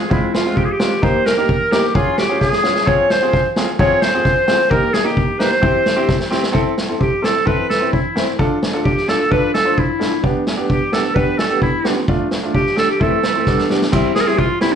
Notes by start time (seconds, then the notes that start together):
Already playing: G#4
0.10 G#3 C4 E4 F4, kick
0.34 F4, snare
0.45 G#3 C4 F4
0.55 G4 G#4, kick
0.65 G#4
0.72 G4
0.79 G#3 C4 F4, snare
1.02 A#3 D#4 G4 C5, kick
1.26 A#4, snare
1.37 A#3 D#4 G4
1.49 kick
1.72 A#3 D#4 G4, snare
1.89 G4
1.95 C#4 F4 G#4, kick
2.18 G4, snare
2.29 C#4 F4 G#4
2.41 G#4, kick, snare
2.52 snare
2.63 C#4 F4 G#4, snare
2.76 snare
2.85 C4 F4 G#4 C#5, kick
3.10 C5, snare
3.23 C4 F4 G#4
3.33 kick, snare
3.56 C4 F4 G#4, snare
3.78 C4 F4 G#4 C#5, kick
4.02 C5, snare
4.14 C4 F4 G#4
4.25 kick, snare
4.47 C4 F4 G#4 C5, snare
4.60 snare
4.70 A#3 D#4 G4 A#4, kick
4.92 G#4, snare
5.04 A#3 D#4 G4
5.17 kick
5.39 A#3 D#4 G4 C5, snare
5.52 snare
5.62 C4 E4 G4, kick
5.86 snare
5.96 C4 E4 G4
6.09 kick, snare
6.20 snare
6.31 C4 E4 G4, snare
6.43 snare
6.53 C4 E4 A4, kick
6.78 snare
6.89 C4 E4 A4
6.99 G4, kick
7.03 G4
7.22 C4 E4 A4, snare
7.45 C4 E4 A4 B4, kick
7.70 A4, snare
7.80 C4 E4 C5
7.92 E4, kick
8.16 C4 E4 C5, snare
8.39 D4 F4 A4, kick
8.62 snare
8.73 D4 F4 A4
8.84 G4, kick
8.97 snare
9.08 D4 F4 A4, snare
9.31 D4 F4 A4 B4, kick
9.54 A4, snare
9.65 D4 F4 C5
9.78 E4, kick
9.99 D4 F4 A4, snare
10.23 B3 D4 G4, kick
10.47 snare
10.57 B3 D4 G4
10.70 G4, kick
10.92 B3 D4 G4 A4, snare
11.14 B3 D4 G4 B4, kick
11.38 A4, snare
11.50 B3 D4 G4
11.60 E4, kick
11.84 B3 D4 F4 G4, snare
12.08 A3 D4 F4, kick
12.31 snare
12.43 A3 D4 F4
12.53 G4, kick
12.66 snare
12.76 A3 D4 G4 A4, snare
12.89 G4
13.00 A3 C4 E4 A4, kick
13.08 B4
13.16 A4
13.23 B4, snare
13.32 A3 C4 E4 A4
13.41 B4
13.46 G3 B3 D4 A4, kick, snare
13.58 snare
13.70 G3 B3 D4, snare
13.82 snare
13.92 G3 C4 E4, kick, crash
14.15 G#4, snare
14.21 A#4
14.27 G3 C4 E4 G#4, snare
14.38 F4, kick
14.60 G3 C4 E4, snare